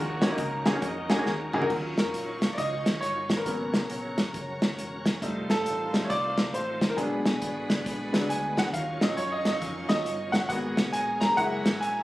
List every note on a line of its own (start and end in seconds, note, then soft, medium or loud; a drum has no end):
0.00 0.32 D#2 loud
0.00 0.62 D#3 medium
0.00 1.69 D#3 medium
0.00 0.22 F#3 medium
0.00 0.38 A#3 medium
0.00 1.67 A#3 medium
0.00 0.66 C#4 medium
0.00 1.68 C#4 medium
0.00 0.22 F#4 medium
0.00 1.69 F#4 medium
0.22 0.38 G#3 medium
0.22 0.27 A#3 medium
0.22 0.27 C#4 medium
0.22 0.27 D#4 medium
0.22 0.27 F#4 medium
0.22 0.38 G#4 medium
0.22 0.27 C#5 medium
0.22 snare loud
0.22 closed hi-hat medium
0.30 0.42 A#3 medium
0.30 0.42 C#4 medium
0.30 0.42 D#4 medium
0.30 0.42 F#4 medium
0.30 0.42 D#5 medium
0.38 0.76 C#2 loud
0.38 0.66 A#3 medium
0.38 0.66 A#4 medium
0.38 kick loud
0.38 closed hi-hat medium
0.66 0.71 A#3 medium
0.66 0.71 C#4 medium
0.66 0.82 C#4 medium
0.66 0.71 D#4 medium
0.66 0.71 F#4 medium
0.66 0.71 G#4 medium
0.66 0.82 C#5 medium
0.66 kick medium
0.66 snare loud
0.66 closed hi-hat medium
0.74 0.86 A#3 medium
0.74 0.86 C#4 medium
0.74 0.86 D#4 medium
0.74 0.86 F#4 medium
0.74 0.86 G#4 medium
0.82 1.20 F2 medium
0.82 1.26 D#4 medium
0.82 1.66 F#4 medium
0.82 1.66 A#4 medium
0.82 1.26 D#5 medium
0.82 kick loud
0.82 closed hi-hat medium
1.10 1.15 A#3 medium
1.10 1.15 C#4 medium
1.10 1.15 D#4 medium
1.10 1.15 F#4 medium
1.10 1.15 G#4 medium
1.10 snare loud
1.10 closed hi-hat medium
1.18 1.30 A#3 medium
1.18 1.30 C#4 medium
1.18 1.30 D#4 medium
1.18 1.30 F#4 medium
1.18 1.30 G#4 medium
1.26 1.50 D#2 medium
1.26 snare medium
1.53 1.68 C#2 medium
1.53 1.59 A#3 medium
1.53 1.59 C#4 medium
1.53 1.59 D#4 medium
1.53 1.59 F#4 medium
1.53 1.59 G#4 loud
1.53 mid tom medium
1.62 1.70 A#3 medium
1.62 1.69 C#4 medium
1.62 1.70 D#4 medium
1.62 1.70 F#4 medium
1.62 1.70 A#4 medium
1.62 floor tom loud
1.70 1.94 D#2 loud
1.70 3.45 D#3 medium
1.70 2.38 F#3 soft
1.70 3.45 F#3 medium
1.70 2.38 C#4 soft
1.70 3.45 C#4 medium
1.70 3.45 F4 medium
1.70 2.39 F4 soft
1.70 3.45 D#5 medium
1.70 3.45 F5 medium
1.70 3.45 C#6 medium
1.70 kick medium
1.70 crash medium
1.98 2.12 F2 medium
1.98 2.55 A#4 medium
1.98 snare loud
1.98 closed hi-hat medium
2.14 2.52 A#1 medium
2.14 closed hi-hat medium
2.42 kick medium
2.42 snare medium
2.42 closed hi-hat medium
2.53 2.58 D5 medium
2.58 2.82 C#2 loud
2.58 2.99 D#5 loud
2.58 kick loud
2.58 closed hi-hat medium
2.86 3.00 D#2 medium
2.86 snare loud
2.86 closed hi-hat medium
3.01 3.40 G1 medium
3.01 3.33 C#5 medium
3.01 closed hi-hat medium
3.29 kick medium
3.29 snare loud
3.29 closed hi-hat medium
3.36 3.44 A#4 medium
3.36 3.38 B4 medium
3.46 3.70 G#1 medium
3.46 5.21 C#3 medium
3.46 4.14 F#3 soft
3.46 4.15 A#3 soft
3.46 4.15 B3 soft
3.46 5.21 C#4 medium
3.46 4.15 C#4 medium
3.46 5.21 F#4 medium
3.46 4.58 A#4 medium
3.46 5.21 A#4 medium
3.46 5.21 C#5 medium
3.46 5.21 F#5 medium
3.46 5.20 A#5 medium
3.46 kick medium
3.46 closed hi-hat medium
3.74 3.88 B1 medium
3.74 snare loud
3.74 closed hi-hat medium
3.90 4.28 A#1 medium
3.90 closed hi-hat medium
4.18 kick medium
4.18 snare medium
4.18 closed hi-hat medium
4.34 4.72 F#1 medium
4.34 kick loud
4.34 closed hi-hat medium
4.62 snare loud
4.62 closed hi-hat medium
4.78 5.16 E1 medium
4.78 closed hi-hat medium
5.06 kick medium
5.06 snare loud
5.06 closed hi-hat medium
5.22 5.46 F1 loud
5.22 6.96 D#3 medium
5.22 5.92 G3 soft
5.22 6.96 A3 medium
5.22 5.92 A3 soft
5.22 6.96 C4 medium
5.22 6.96 D#4 medium
5.22 5.92 D#4 medium
5.22 6.96 F4 medium
5.22 6.96 F5 medium
5.22 6.96 A5 medium
5.22 6.97 C6 medium
5.22 kick medium
5.22 closed hi-hat medium
5.50 5.64 G1 medium
5.50 6.01 A4 loud
5.50 snare loud
5.50 closed hi-hat medium
5.66 6.03 A1 medium
5.66 closed hi-hat medium
5.93 6.08 G3 soft
5.93 6.08 A3 soft
5.93 6.08 D#4 medium
5.93 kick medium
5.93 snare loud
5.93 closed hi-hat medium
6.04 6.10 C#5 medium
6.10 6.48 C2 medium
6.10 6.51 D5 loud
6.10 kick loud
6.10 closed hi-hat medium
6.38 snare loud
6.38 closed hi-hat medium
6.54 6.91 A1 medium
6.54 6.91 C5 medium
6.54 closed hi-hat medium
6.81 kick medium
6.81 snare loud
6.81 closed hi-hat medium
6.90 6.97 A#4 medium
6.96 7.22 A#1 loud
6.96 8.72 D3 medium
6.96 7.30 F#3 soft
6.96 7.30 G#3 soft
6.96 8.72 G#3 medium
6.96 7.30 B3 soft
6.96 8.72 B3 medium
6.96 7.30 D4 medium
6.96 8.72 F#4 medium
6.96 8.09 G#4 medium
6.96 8.72 D5 medium
6.96 8.72 G#5 medium
6.96 8.73 B5 medium
6.96 kick medium
6.96 closed hi-hat medium
7.25 7.39 B1 loud
7.25 snare loud
7.25 closed hi-hat medium
7.42 7.66 G#1 medium
7.42 kick medium
7.42 closed hi-hat medium
7.70 7.84 F#1 medium
7.70 kick medium
7.70 snare loud
7.70 closed hi-hat medium
7.86 8.10 A#1 loud
7.86 kick loud
7.86 closed hi-hat medium
8.13 8.28 D2 medium
8.13 8.28 F#3 soft
8.13 8.28 G#3 soft
8.13 8.28 B3 soft
8.13 8.28 D4 medium
8.13 snare loud
8.13 closed hi-hat medium
8.29 8.67 D2 medium
8.29 8.60 G#5 medium
8.29 closed hi-hat medium
8.57 8.73 F#5 medium
8.57 kick medium
8.57 snare loud
8.57 closed hi-hat medium
8.73 8.97 D#2 loud
8.73 10.48 D#3 medium
8.73 12.03 F#3 medium
8.73 10.48 C#4 medium
8.73 10.48 F4 medium
8.73 10.48 D#5 medium
8.73 9.04 F5 medium
8.73 10.48 F5 medium
8.73 10.48 C#6 medium
8.73 kick loud
8.73 closed hi-hat medium
9.01 9.15 A#1 medium
9.01 9.88 F#3 medium
9.01 9.88 C#4 medium
9.01 9.89 F4 medium
9.01 9.18 D#5 medium
9.01 snare loud
9.01 closed hi-hat medium
9.17 9.55 F#2 medium
9.17 9.33 C#5 medium
9.17 closed hi-hat medium
9.32 9.45 D#5 medium
9.45 9.52 D#5 medium
9.45 kick medium
9.45 snare medium
9.45 closed hi-hat medium
9.62 9.86 F2 medium
9.62 kick loud
9.62 closed hi-hat medium
9.89 10.04 D#2 medium
9.89 10.04 F#3 soft
9.89 10.04 C#4 soft
9.89 10.05 F4 medium
9.89 10.35 D#5 loud
9.89 snare loud
9.89 closed hi-hat medium
10.06 10.43 G1 medium
10.06 closed hi-hat medium
10.32 10.47 F#5 medium
10.32 kick medium
10.32 snare loud
10.32 closed hi-hat medium
10.49 10.73 G#1 loud
10.49 11.37 G#3 medium
10.49 11.34 A#3 medium
10.49 11.34 B3 soft
10.49 11.34 F#4 medium
10.49 11.37 G#4 medium
10.49 11.37 A#4 medium
10.49 12.03 A#4 medium
10.49 10.90 F#5 medium
10.49 12.03 G#5 medium
10.49 12.03 A#5 medium
10.49 kick loud
10.49 closed hi-hat medium
10.77 10.91 B1 loud
10.77 snare loud
10.77 closed hi-hat medium
10.93 11.31 A#1 medium
10.93 11.22 G#5 loud
10.93 closed hi-hat medium
11.21 11.38 A#5 loud
11.21 kick medium
11.21 snare loud
11.21 closed hi-hat medium
11.37 11.62 F#1 loud
11.37 12.03 G#3 medium
11.37 12.03 A#3 soft
11.37 12.03 E4 medium
11.37 12.03 G#4 medium
11.37 12.03 E5 medium
11.37 11.83 F#5 loud
11.37 kick loud
11.37 closed hi-hat medium
11.66 11.82 G#1 medium
11.66 snare loud
11.66 closed hi-hat medium
11.81 12.03 A#1 loud
11.81 12.03 G#5 medium
11.81 closed hi-hat medium